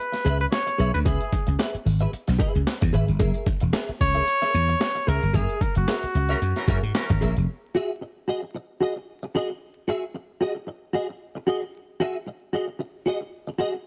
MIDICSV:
0, 0, Header, 1, 8, 480
1, 0, Start_track
1, 0, Tempo, 533333
1, 952, Time_signature, 4, 2, 24, 8
1, 12481, End_track
2, 0, Start_track
2, 0, Title_t, "Trumpet"
2, 0, Program_c, 0, 56
2, 0, Note_on_c, 0, 71, 89
2, 361, Note_off_c, 0, 71, 0
2, 367, Note_on_c, 0, 71, 94
2, 414, Note_off_c, 0, 71, 0
2, 465, Note_on_c, 0, 73, 97
2, 817, Note_off_c, 0, 73, 0
2, 845, Note_on_c, 0, 71, 87
2, 893, Note_off_c, 0, 71, 0
2, 952, Note_on_c, 0, 68, 78
2, 1401, Note_off_c, 0, 68, 0
2, 3604, Note_on_c, 0, 73, 123
2, 4577, Note_on_c, 0, 70, 95
2, 4591, Note_off_c, 0, 73, 0
2, 4819, Note_on_c, 0, 68, 83
2, 4832, Note_off_c, 0, 70, 0
2, 5057, Note_on_c, 0, 70, 82
2, 5071, Note_off_c, 0, 68, 0
2, 5188, Note_off_c, 0, 70, 0
2, 5193, Note_on_c, 0, 66, 82
2, 6460, Note_off_c, 0, 66, 0
2, 12481, End_track
3, 0, Start_track
3, 0, Title_t, "Clean electric guitar"
3, 0, Program_c, 1, 27
3, 222, Note_on_c, 1, 68, 76
3, 231, Note_on_c, 1, 71, 93
3, 239, Note_on_c, 1, 76, 92
3, 346, Note_off_c, 1, 76, 0
3, 357, Note_off_c, 1, 71, 0
3, 360, Note_off_c, 1, 68, 0
3, 704, Note_on_c, 1, 68, 75
3, 711, Note_on_c, 1, 71, 79
3, 722, Note_on_c, 1, 76, 91
3, 829, Note_off_c, 1, 76, 0
3, 842, Note_off_c, 1, 71, 0
3, 843, Note_off_c, 1, 68, 0
3, 946, Note_on_c, 1, 68, 87
3, 954, Note_on_c, 1, 71, 96
3, 963, Note_on_c, 1, 76, 95
3, 1173, Note_off_c, 1, 68, 0
3, 1177, Note_off_c, 1, 71, 0
3, 1182, Note_off_c, 1, 76, 0
3, 1430, Note_on_c, 1, 68, 85
3, 1437, Note_on_c, 1, 71, 81
3, 1444, Note_on_c, 1, 76, 89
3, 1568, Note_off_c, 1, 68, 0
3, 1571, Note_off_c, 1, 71, 0
3, 1574, Note_off_c, 1, 76, 0
3, 1805, Note_on_c, 1, 76, 63
3, 1814, Note_on_c, 1, 71, 62
3, 1822, Note_on_c, 1, 68, 51
3, 1891, Note_off_c, 1, 76, 0
3, 1896, Note_off_c, 1, 71, 0
3, 1899, Note_off_c, 1, 68, 0
3, 2147, Note_on_c, 1, 68, 77
3, 2158, Note_on_c, 1, 71, 69
3, 2164, Note_on_c, 1, 76, 88
3, 2276, Note_off_c, 1, 76, 0
3, 2289, Note_off_c, 1, 71, 0
3, 2340, Note_off_c, 1, 68, 0
3, 2636, Note_on_c, 1, 68, 75
3, 2644, Note_on_c, 1, 71, 73
3, 2652, Note_on_c, 1, 76, 85
3, 2754, Note_off_c, 1, 76, 0
3, 2769, Note_off_c, 1, 71, 0
3, 2774, Note_off_c, 1, 68, 0
3, 2875, Note_on_c, 1, 68, 101
3, 2882, Note_on_c, 1, 70, 88
3, 2893, Note_on_c, 1, 76, 99
3, 3102, Note_off_c, 1, 68, 0
3, 3106, Note_off_c, 1, 70, 0
3, 3111, Note_off_c, 1, 76, 0
3, 3356, Note_on_c, 1, 68, 82
3, 3365, Note_on_c, 1, 70, 87
3, 3372, Note_on_c, 1, 76, 94
3, 3495, Note_off_c, 1, 68, 0
3, 3499, Note_off_c, 1, 70, 0
3, 3503, Note_off_c, 1, 76, 0
3, 3731, Note_on_c, 1, 76, 68
3, 3741, Note_on_c, 1, 70, 57
3, 3747, Note_on_c, 1, 68, 57
3, 3818, Note_off_c, 1, 76, 0
3, 3824, Note_off_c, 1, 70, 0
3, 3826, Note_off_c, 1, 68, 0
3, 3977, Note_on_c, 1, 76, 86
3, 3988, Note_on_c, 1, 70, 77
3, 3997, Note_on_c, 1, 68, 58
3, 4074, Note_off_c, 1, 68, 0
3, 4080, Note_off_c, 1, 70, 0
3, 4085, Note_off_c, 1, 76, 0
3, 4563, Note_on_c, 1, 68, 77
3, 4572, Note_on_c, 1, 70, 79
3, 4578, Note_on_c, 1, 76, 88
3, 4692, Note_off_c, 1, 76, 0
3, 4701, Note_off_c, 1, 68, 0
3, 4702, Note_off_c, 1, 70, 0
3, 4801, Note_on_c, 1, 68, 88
3, 4812, Note_on_c, 1, 70, 98
3, 4821, Note_on_c, 1, 76, 94
3, 5028, Note_off_c, 1, 68, 0
3, 5034, Note_off_c, 1, 70, 0
3, 5038, Note_off_c, 1, 76, 0
3, 5290, Note_on_c, 1, 68, 84
3, 5298, Note_on_c, 1, 70, 77
3, 5305, Note_on_c, 1, 76, 82
3, 5425, Note_off_c, 1, 68, 0
3, 5429, Note_off_c, 1, 70, 0
3, 5432, Note_off_c, 1, 76, 0
3, 5662, Note_on_c, 1, 76, 71
3, 5670, Note_on_c, 1, 70, 69
3, 5680, Note_on_c, 1, 68, 55
3, 5746, Note_off_c, 1, 76, 0
3, 5750, Note_off_c, 1, 70, 0
3, 5755, Note_off_c, 1, 68, 0
3, 6011, Note_on_c, 1, 68, 74
3, 6021, Note_on_c, 1, 70, 86
3, 6028, Note_on_c, 1, 76, 96
3, 6134, Note_off_c, 1, 76, 0
3, 6145, Note_off_c, 1, 68, 0
3, 6145, Note_off_c, 1, 70, 0
3, 6489, Note_on_c, 1, 68, 66
3, 6498, Note_on_c, 1, 70, 79
3, 6505, Note_on_c, 1, 76, 89
3, 6617, Note_off_c, 1, 76, 0
3, 6625, Note_off_c, 1, 68, 0
3, 6629, Note_off_c, 1, 70, 0
3, 6971, Note_on_c, 1, 66, 82
3, 6982, Note_on_c, 1, 68, 102
3, 6990, Note_on_c, 1, 76, 88
3, 7106, Note_off_c, 1, 66, 0
3, 7111, Note_off_c, 1, 68, 0
3, 7115, Note_off_c, 1, 76, 0
3, 7449, Note_on_c, 1, 66, 56
3, 7457, Note_on_c, 1, 68, 59
3, 7464, Note_on_c, 1, 75, 73
3, 7555, Note_off_c, 1, 66, 0
3, 7559, Note_off_c, 1, 68, 0
3, 7562, Note_off_c, 1, 75, 0
3, 7925, Note_on_c, 1, 66, 67
3, 7937, Note_on_c, 1, 68, 65
3, 7945, Note_on_c, 1, 75, 78
3, 8033, Note_off_c, 1, 66, 0
3, 8038, Note_off_c, 1, 68, 0
3, 8042, Note_off_c, 1, 75, 0
3, 8412, Note_on_c, 1, 66, 72
3, 8419, Note_on_c, 1, 68, 95
3, 8428, Note_on_c, 1, 75, 84
3, 8539, Note_off_c, 1, 75, 0
3, 8545, Note_off_c, 1, 66, 0
3, 8548, Note_off_c, 1, 68, 0
3, 8889, Note_on_c, 1, 66, 69
3, 8898, Note_on_c, 1, 68, 88
3, 8906, Note_on_c, 1, 76, 81
3, 9023, Note_off_c, 1, 66, 0
3, 9027, Note_off_c, 1, 68, 0
3, 9031, Note_off_c, 1, 76, 0
3, 9366, Note_on_c, 1, 66, 66
3, 9376, Note_on_c, 1, 68, 69
3, 9381, Note_on_c, 1, 75, 69
3, 9471, Note_off_c, 1, 66, 0
3, 9476, Note_off_c, 1, 68, 0
3, 9478, Note_off_c, 1, 75, 0
3, 9840, Note_on_c, 1, 66, 65
3, 9851, Note_on_c, 1, 68, 75
3, 9858, Note_on_c, 1, 75, 78
3, 9947, Note_off_c, 1, 66, 0
3, 9953, Note_off_c, 1, 68, 0
3, 9956, Note_off_c, 1, 75, 0
3, 10320, Note_on_c, 1, 66, 71
3, 10330, Note_on_c, 1, 68, 83
3, 10336, Note_on_c, 1, 75, 76
3, 10445, Note_off_c, 1, 75, 0
3, 10455, Note_off_c, 1, 66, 0
3, 10460, Note_off_c, 1, 68, 0
3, 10800, Note_on_c, 1, 66, 84
3, 10812, Note_on_c, 1, 68, 93
3, 10817, Note_on_c, 1, 76, 94
3, 10935, Note_off_c, 1, 66, 0
3, 10940, Note_off_c, 1, 68, 0
3, 10943, Note_off_c, 1, 76, 0
3, 11278, Note_on_c, 1, 66, 65
3, 11288, Note_on_c, 1, 68, 60
3, 11295, Note_on_c, 1, 75, 65
3, 11383, Note_off_c, 1, 66, 0
3, 11388, Note_off_c, 1, 68, 0
3, 11392, Note_off_c, 1, 75, 0
3, 11752, Note_on_c, 1, 66, 67
3, 11764, Note_on_c, 1, 68, 69
3, 11772, Note_on_c, 1, 75, 78
3, 11859, Note_off_c, 1, 66, 0
3, 11865, Note_off_c, 1, 68, 0
3, 11869, Note_off_c, 1, 75, 0
3, 12226, Note_on_c, 1, 66, 76
3, 12237, Note_on_c, 1, 68, 81
3, 12245, Note_on_c, 1, 75, 83
3, 12356, Note_off_c, 1, 75, 0
3, 12364, Note_off_c, 1, 66, 0
3, 12369, Note_off_c, 1, 68, 0
3, 12481, End_track
4, 0, Start_track
4, 0, Title_t, "Horn section"
4, 0, Program_c, 2, 61
4, 5666, Note_on_c, 2, 61, 89
4, 5669, Note_on_c, 2, 70, 97
4, 5670, Note_on_c, 2, 52, 87
4, 5733, Note_off_c, 2, 61, 0
4, 5735, Note_off_c, 2, 70, 0
4, 5736, Note_off_c, 2, 52, 0
4, 5908, Note_on_c, 2, 61, 79
4, 5910, Note_on_c, 2, 52, 91
4, 5910, Note_on_c, 2, 70, 94
4, 5974, Note_off_c, 2, 61, 0
4, 5976, Note_off_c, 2, 52, 0
4, 5976, Note_off_c, 2, 70, 0
4, 6015, Note_on_c, 2, 52, 79
4, 6015, Note_on_c, 2, 70, 86
4, 6016, Note_on_c, 2, 61, 86
4, 6099, Note_off_c, 2, 52, 0
4, 6099, Note_off_c, 2, 70, 0
4, 6100, Note_off_c, 2, 61, 0
4, 6255, Note_on_c, 2, 61, 92
4, 6255, Note_on_c, 2, 70, 106
4, 6256, Note_on_c, 2, 52, 89
4, 6609, Note_off_c, 2, 52, 0
4, 6609, Note_off_c, 2, 61, 0
4, 6609, Note_off_c, 2, 70, 0
4, 12481, End_track
5, 0, Start_track
5, 0, Title_t, "Slap bass"
5, 0, Program_c, 3, 36
5, 229, Note_on_c, 3, 37, 95
5, 402, Note_off_c, 3, 37, 0
5, 714, Note_on_c, 3, 35, 83
5, 810, Note_off_c, 3, 35, 0
5, 849, Note_on_c, 3, 38, 94
5, 924, Note_off_c, 3, 38, 0
5, 953, Note_on_c, 3, 37, 96
5, 1050, Note_off_c, 3, 37, 0
5, 1330, Note_on_c, 3, 37, 90
5, 1406, Note_off_c, 3, 37, 0
5, 1674, Note_on_c, 3, 32, 90
5, 1848, Note_off_c, 3, 32, 0
5, 2055, Note_on_c, 3, 35, 84
5, 2130, Note_off_c, 3, 35, 0
5, 2299, Note_on_c, 3, 37, 79
5, 2373, Note_off_c, 3, 37, 0
5, 2541, Note_on_c, 3, 40, 81
5, 2615, Note_off_c, 3, 40, 0
5, 2642, Note_on_c, 3, 32, 80
5, 2739, Note_off_c, 3, 32, 0
5, 2779, Note_on_c, 3, 31, 96
5, 2882, Note_off_c, 3, 31, 0
5, 2882, Note_on_c, 3, 30, 92
5, 2979, Note_off_c, 3, 30, 0
5, 3263, Note_on_c, 3, 28, 88
5, 3337, Note_off_c, 3, 28, 0
5, 3609, Note_on_c, 3, 37, 78
5, 3781, Note_off_c, 3, 37, 0
5, 4089, Note_on_c, 3, 40, 95
5, 4262, Note_off_c, 3, 40, 0
5, 4572, Note_on_c, 3, 37, 92
5, 4667, Note_off_c, 3, 37, 0
5, 4709, Note_on_c, 3, 31, 90
5, 4783, Note_off_c, 3, 31, 0
5, 4810, Note_on_c, 3, 30, 86
5, 4907, Note_off_c, 3, 30, 0
5, 5189, Note_on_c, 3, 30, 92
5, 5263, Note_off_c, 3, 30, 0
5, 5534, Note_on_c, 3, 37, 83
5, 5706, Note_off_c, 3, 37, 0
5, 5777, Note_on_c, 3, 42, 84
5, 5871, Note_off_c, 3, 42, 0
5, 6012, Note_on_c, 3, 42, 109
5, 6108, Note_off_c, 3, 42, 0
5, 6146, Note_on_c, 3, 44, 77
5, 6222, Note_off_c, 3, 44, 0
5, 6395, Note_on_c, 3, 32, 87
5, 6467, Note_off_c, 3, 32, 0
5, 6499, Note_on_c, 3, 34, 77
5, 6593, Note_off_c, 3, 34, 0
5, 6636, Note_on_c, 3, 29, 90
5, 6708, Note_off_c, 3, 29, 0
5, 12481, End_track
6, 0, Start_track
6, 0, Title_t, "Muted clean electric guitar strokes"
6, 112, Note_on_c, 9, 29, 47
6, 202, Note_off_c, 9, 29, 0
6, 356, Note_on_c, 9, 29, 38
6, 446, Note_off_c, 9, 29, 0
6, 464, Note_on_c, 9, 29, 50
6, 554, Note_off_c, 9, 29, 0
6, 599, Note_on_c, 9, 29, 34
6, 689, Note_off_c, 9, 29, 0
6, 839, Note_on_c, 9, 29, 35
6, 929, Note_off_c, 9, 29, 0
6, 1321, Note_on_c, 9, 29, 46
6, 1411, Note_off_c, 9, 29, 0
6, 1669, Note_on_c, 9, 29, 37
6, 1759, Note_off_c, 9, 29, 0
6, 1909, Note_on_c, 9, 29, 36
6, 1999, Note_off_c, 9, 29, 0
6, 2050, Note_on_c, 9, 29, 50
6, 2140, Note_off_c, 9, 29, 0
6, 2287, Note_on_c, 9, 29, 49
6, 2377, Note_off_c, 9, 29, 0
6, 2398, Note_on_c, 9, 29, 38
6, 2488, Note_off_c, 9, 29, 0
6, 2532, Note_on_c, 9, 29, 47
6, 2622, Note_off_c, 9, 29, 0
6, 2765, Note_on_c, 9, 29, 43
6, 2855, Note_off_c, 9, 29, 0
6, 3253, Note_on_c, 9, 29, 55
6, 3343, Note_off_c, 9, 29, 0
6, 3601, Note_on_c, 9, 29, 41
6, 3691, Note_off_c, 9, 29, 0
6, 3839, Note_on_c, 9, 29, 43
6, 3929, Note_off_c, 9, 29, 0
6, 4216, Note_on_c, 9, 29, 47
6, 4306, Note_off_c, 9, 29, 0
6, 4322, Note_on_c, 9, 29, 42
6, 4412, Note_off_c, 9, 29, 0
6, 4457, Note_on_c, 9, 29, 38
6, 4547, Note_off_c, 9, 29, 0
6, 4703, Note_on_c, 9, 29, 41
6, 4793, Note_off_c, 9, 29, 0
6, 5185, Note_on_c, 9, 29, 41
6, 5275, Note_off_c, 9, 29, 0
6, 5532, Note_on_c, 9, 29, 42
6, 5622, Note_off_c, 9, 29, 0
6, 5771, Note_on_c, 9, 29, 45
6, 5861, Note_off_c, 9, 29, 0
6, 5907, Note_on_c, 9, 29, 44
6, 5997, Note_off_c, 9, 29, 0
6, 6145, Note_on_c, 9, 29, 47
6, 6235, Note_off_c, 9, 29, 0
6, 6255, Note_on_c, 9, 29, 43
6, 6345, Note_off_c, 9, 29, 0
6, 6386, Note_on_c, 9, 29, 43
6, 6476, Note_off_c, 9, 29, 0
6, 6628, Note_on_c, 9, 29, 43
6, 6718, Note_off_c, 9, 29, 0
6, 7211, Note_on_c, 9, 29, 41
6, 7301, Note_off_c, 9, 29, 0
6, 7582, Note_on_c, 9, 29, 56
6, 7672, Note_off_c, 9, 29, 0
6, 7691, Note_on_c, 9, 29, 40
6, 7781, Note_off_c, 9, 29, 0
6, 8066, Note_on_c, 9, 29, 58
6, 8156, Note_off_c, 9, 29, 0
6, 8307, Note_on_c, 9, 29, 45
6, 8397, Note_off_c, 9, 29, 0
6, 8550, Note_on_c, 9, 29, 51
6, 8640, Note_off_c, 9, 29, 0
6, 9129, Note_on_c, 9, 29, 42
6, 9219, Note_off_c, 9, 29, 0
6, 9495, Note_on_c, 9, 29, 50
6, 9585, Note_off_c, 9, 29, 0
6, 9602, Note_on_c, 9, 29, 31
6, 9692, Note_off_c, 9, 29, 0
6, 9983, Note_on_c, 9, 29, 58
6, 10073, Note_off_c, 9, 29, 0
6, 10217, Note_on_c, 9, 29, 35
6, 10307, Note_off_c, 9, 29, 0
6, 10456, Note_on_c, 9, 29, 40
6, 10546, Note_off_c, 9, 29, 0
6, 11039, Note_on_c, 9, 29, 52
6, 11129, Note_off_c, 9, 29, 0
6, 11408, Note_on_c, 9, 29, 54
6, 11498, Note_off_c, 9, 29, 0
6, 11512, Note_on_c, 9, 29, 49
6, 11602, Note_off_c, 9, 29, 0
6, 11885, Note_on_c, 9, 29, 63
6, 11975, Note_off_c, 9, 29, 0
6, 12126, Note_on_c, 9, 29, 41
6, 12216, Note_off_c, 9, 29, 0
6, 12366, Note_on_c, 9, 29, 52
6, 12456, Note_off_c, 9, 29, 0
6, 12481, End_track
7, 0, Start_track
7, 0, Title_t, "Muted slap bass strokes"
7, 1572, Note_on_c, 9, 29, 47
7, 1662, Note_off_c, 9, 29, 0
7, 1920, Note_on_c, 9, 29, 44
7, 2010, Note_off_c, 9, 29, 0
7, 3503, Note_on_c, 9, 29, 44
7, 3593, Note_off_c, 9, 29, 0
7, 5432, Note_on_c, 9, 29, 47
7, 5522, Note_off_c, 9, 29, 0
7, 12481, End_track
8, 0, Start_track
8, 0, Title_t, "Drums"
8, 121, Note_on_c, 9, 42, 52
8, 125, Note_on_c, 9, 38, 41
8, 211, Note_off_c, 9, 42, 0
8, 215, Note_off_c, 9, 38, 0
8, 231, Note_on_c, 9, 42, 78
8, 321, Note_off_c, 9, 42, 0
8, 366, Note_on_c, 9, 42, 48
8, 456, Note_off_c, 9, 42, 0
8, 470, Note_on_c, 9, 42, 84
8, 471, Note_on_c, 9, 38, 99
8, 560, Note_off_c, 9, 42, 0
8, 561, Note_off_c, 9, 38, 0
8, 605, Note_on_c, 9, 42, 67
8, 695, Note_off_c, 9, 42, 0
8, 716, Note_on_c, 9, 42, 73
8, 806, Note_off_c, 9, 42, 0
8, 851, Note_on_c, 9, 42, 49
8, 941, Note_off_c, 9, 42, 0
8, 951, Note_on_c, 9, 36, 100
8, 951, Note_on_c, 9, 42, 87
8, 1041, Note_off_c, 9, 36, 0
8, 1041, Note_off_c, 9, 42, 0
8, 1085, Note_on_c, 9, 42, 36
8, 1175, Note_off_c, 9, 42, 0
8, 1193, Note_on_c, 9, 36, 100
8, 1197, Note_on_c, 9, 42, 68
8, 1283, Note_off_c, 9, 36, 0
8, 1287, Note_off_c, 9, 42, 0
8, 1321, Note_on_c, 9, 42, 61
8, 1411, Note_off_c, 9, 42, 0
8, 1435, Note_on_c, 9, 38, 107
8, 1436, Note_on_c, 9, 42, 93
8, 1525, Note_off_c, 9, 38, 0
8, 1526, Note_off_c, 9, 42, 0
8, 1574, Note_on_c, 9, 42, 46
8, 1664, Note_off_c, 9, 42, 0
8, 1680, Note_on_c, 9, 46, 68
8, 1770, Note_off_c, 9, 46, 0
8, 1801, Note_on_c, 9, 42, 44
8, 1891, Note_off_c, 9, 42, 0
8, 1919, Note_on_c, 9, 42, 86
8, 2009, Note_off_c, 9, 42, 0
8, 2047, Note_on_c, 9, 42, 53
8, 2051, Note_on_c, 9, 38, 36
8, 2137, Note_off_c, 9, 42, 0
8, 2141, Note_off_c, 9, 38, 0
8, 2155, Note_on_c, 9, 36, 100
8, 2159, Note_on_c, 9, 42, 67
8, 2245, Note_off_c, 9, 36, 0
8, 2249, Note_off_c, 9, 42, 0
8, 2295, Note_on_c, 9, 42, 40
8, 2385, Note_off_c, 9, 42, 0
8, 2402, Note_on_c, 9, 42, 95
8, 2403, Note_on_c, 9, 38, 96
8, 2492, Note_off_c, 9, 42, 0
8, 2493, Note_off_c, 9, 38, 0
8, 2535, Note_on_c, 9, 42, 64
8, 2539, Note_on_c, 9, 36, 108
8, 2625, Note_off_c, 9, 42, 0
8, 2629, Note_off_c, 9, 36, 0
8, 2645, Note_on_c, 9, 42, 69
8, 2735, Note_off_c, 9, 42, 0
8, 2776, Note_on_c, 9, 42, 49
8, 2866, Note_off_c, 9, 42, 0
8, 2876, Note_on_c, 9, 42, 90
8, 2879, Note_on_c, 9, 36, 117
8, 2966, Note_off_c, 9, 42, 0
8, 2969, Note_off_c, 9, 36, 0
8, 3010, Note_on_c, 9, 42, 37
8, 3100, Note_off_c, 9, 42, 0
8, 3118, Note_on_c, 9, 42, 73
8, 3119, Note_on_c, 9, 36, 102
8, 3208, Note_off_c, 9, 42, 0
8, 3209, Note_off_c, 9, 36, 0
8, 3244, Note_on_c, 9, 42, 57
8, 3334, Note_off_c, 9, 42, 0
8, 3360, Note_on_c, 9, 38, 113
8, 3360, Note_on_c, 9, 42, 97
8, 3450, Note_off_c, 9, 38, 0
8, 3450, Note_off_c, 9, 42, 0
8, 3499, Note_on_c, 9, 42, 38
8, 3589, Note_off_c, 9, 42, 0
8, 3606, Note_on_c, 9, 36, 72
8, 3610, Note_on_c, 9, 46, 66
8, 3696, Note_off_c, 9, 36, 0
8, 3700, Note_off_c, 9, 46, 0
8, 3732, Note_on_c, 9, 42, 48
8, 3822, Note_off_c, 9, 42, 0
8, 3850, Note_on_c, 9, 42, 83
8, 3940, Note_off_c, 9, 42, 0
8, 3977, Note_on_c, 9, 42, 54
8, 3981, Note_on_c, 9, 38, 37
8, 4067, Note_off_c, 9, 42, 0
8, 4071, Note_off_c, 9, 38, 0
8, 4088, Note_on_c, 9, 42, 74
8, 4178, Note_off_c, 9, 42, 0
8, 4224, Note_on_c, 9, 42, 44
8, 4314, Note_off_c, 9, 42, 0
8, 4327, Note_on_c, 9, 42, 78
8, 4328, Note_on_c, 9, 38, 105
8, 4417, Note_off_c, 9, 42, 0
8, 4418, Note_off_c, 9, 38, 0
8, 4465, Note_on_c, 9, 42, 62
8, 4555, Note_off_c, 9, 42, 0
8, 4576, Note_on_c, 9, 42, 74
8, 4666, Note_off_c, 9, 42, 0
8, 4707, Note_on_c, 9, 42, 49
8, 4797, Note_off_c, 9, 42, 0
8, 4807, Note_on_c, 9, 42, 89
8, 4808, Note_on_c, 9, 36, 108
8, 4897, Note_off_c, 9, 42, 0
8, 4898, Note_off_c, 9, 36, 0
8, 4941, Note_on_c, 9, 42, 42
8, 5031, Note_off_c, 9, 42, 0
8, 5049, Note_on_c, 9, 36, 95
8, 5053, Note_on_c, 9, 42, 69
8, 5139, Note_off_c, 9, 36, 0
8, 5143, Note_off_c, 9, 42, 0
8, 5176, Note_on_c, 9, 42, 64
8, 5266, Note_off_c, 9, 42, 0
8, 5290, Note_on_c, 9, 38, 121
8, 5291, Note_on_c, 9, 42, 98
8, 5380, Note_off_c, 9, 38, 0
8, 5381, Note_off_c, 9, 42, 0
8, 5427, Note_on_c, 9, 42, 46
8, 5517, Note_off_c, 9, 42, 0
8, 5536, Note_on_c, 9, 42, 70
8, 5626, Note_off_c, 9, 42, 0
8, 5659, Note_on_c, 9, 42, 40
8, 5749, Note_off_c, 9, 42, 0
8, 5777, Note_on_c, 9, 42, 77
8, 5867, Note_off_c, 9, 42, 0
8, 5905, Note_on_c, 9, 42, 52
8, 5909, Note_on_c, 9, 38, 39
8, 5995, Note_off_c, 9, 42, 0
8, 5999, Note_off_c, 9, 38, 0
8, 6010, Note_on_c, 9, 36, 83
8, 6015, Note_on_c, 9, 42, 72
8, 6100, Note_off_c, 9, 36, 0
8, 6105, Note_off_c, 9, 42, 0
8, 6151, Note_on_c, 9, 42, 46
8, 6241, Note_off_c, 9, 42, 0
8, 6253, Note_on_c, 9, 42, 79
8, 6254, Note_on_c, 9, 38, 106
8, 6343, Note_off_c, 9, 42, 0
8, 6344, Note_off_c, 9, 38, 0
8, 6385, Note_on_c, 9, 42, 61
8, 6392, Note_on_c, 9, 36, 111
8, 6475, Note_off_c, 9, 42, 0
8, 6482, Note_off_c, 9, 36, 0
8, 6498, Note_on_c, 9, 42, 73
8, 6588, Note_off_c, 9, 42, 0
8, 6630, Note_on_c, 9, 42, 52
8, 6720, Note_off_c, 9, 42, 0
8, 12481, End_track
0, 0, End_of_file